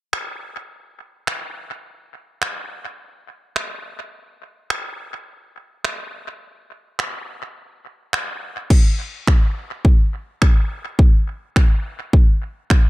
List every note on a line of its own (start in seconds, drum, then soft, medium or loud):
0.13 finger snap medium
1.27 finger snap loud
2.42 finger snap loud
3.56 finger snap loud
4.70 finger snap medium
5.85 finger snap loud
6.99 finger snap loud
8.13 finger snap loud
8.70 kick loud
8.70 crash medium
9.27 finger snap loud
9.27 kick loud
9.85 kick loud
10.42 finger snap loud
10.42 kick loud
10.99 kick loud
11.56 finger snap loud
11.56 kick loud
12.13 kick loud
12.70 finger snap loud
12.70 kick loud